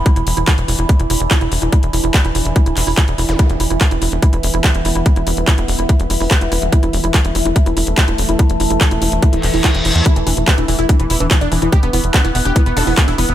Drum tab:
HH |xxoxxxoxxxoxxxox|xxoxxxoxxxooxxox|xxoxxxoxxxoxxxox|xxoxxxoxxxooxxox|
CP |----x-------x---|----x-----x-x---|----x-------x---|----x-------x---|
BD |o---o---o---o---|o---o---o---o---|o---o---o---o---|o---o---o---o---|

HH |xxoxxxoxxxoxxxox|xxoxxxoxxxooxxox|xxoxxxoxxxoxxxox|xxoxxxoxxxooxxox|
CP |----x-------x---|----x-----x-x---|----x-------x---|----x-------x---|
BD |o---o---o---o---|o---o---o---o---|o---o---o---o---|o---o---o---o---|